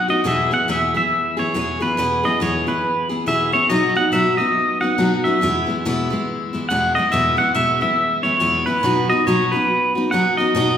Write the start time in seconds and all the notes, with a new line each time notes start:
0.08 B3 D#4 F#4 D#5
0.24 E2 B2 E3 B3 E4 G#4 E5
0.51 E3 B3 E4 G#4 F#5
0.68 E2 B2 E3 B3 E4 G#4 E5
0.94 E3 B3 E4 G#4 E5
1.37 E3 B3 E4 G#4 C#5
1.54 E2 B2 E3 B3 E4 G#4
1.80 E3 B3 E4 G#4 B4
1.97 E2 B2 E3 B3 E4 G#4
2.23 E3 B3 E4 G#4 D#5
2.40 E2 B2 E3 B3 E4 G#4 C#5
2.67 E3 B3 E4 G#4 B4
3.09 E3 B3 E4 G#4
3.26 E2 B2 E3 B3 E4 G#4 E5
3.52 E3 B3 E4 G#4 C#5
3.69 B2 F#3 B3 D#4 F#4 D#5
3.95 B3 D#4 F#4 F#5
4.12 B2 F#3 B3 D#4 F#4 E5
4.37 B3 D#4 F#4 D#5
4.81 B3 D#4 F#4 F#5
4.98 B2 F#3 B3 D#4 F#4
5.24 B3 D#4 F#4 E5
5.41 E2 B2 E3 G#3 B3 E4
5.66 E3 G#3 B3 E4
5.85 E2 B2 E3 G#3 B3 E4
6.10 E3 G#3 B3 E4
6.53 E3 G#3 B3 E4
6.69 E2 B2 E3 G#3 B3 E4 F#5
6.95 G#3 B3 E4 D#5
6.99 E3
7.12 E2 B2 E3 G#3 B3 E4 E5
7.37 E3 G#3 B3 E4 F#5
7.55 E2 B2 E3 G#3 B3 E4 E5
7.81 E3 G#3 B3 E4 E5
8.23 E3 G#3 B3 E4 C#5
8.40 E2 B2 E3 G#3 B3 E4
8.66 E3 G#3 B3 E4 B4
8.83 B2 F#3 B3 D#4 F#4
9.09 B3 D#4 F#4 D#5
9.27 B2 F#3 B3 D#4 F#4 C#5
9.52 D#4 F#4 B4
9.56 B3
9.95 B3 D#4 F#4
10.11 B2 F#3 B3 D#4 F#4 F#5
10.37 B3 D#4 F#4 D#5
10.55 B2 F#3 B3 D#4 F#4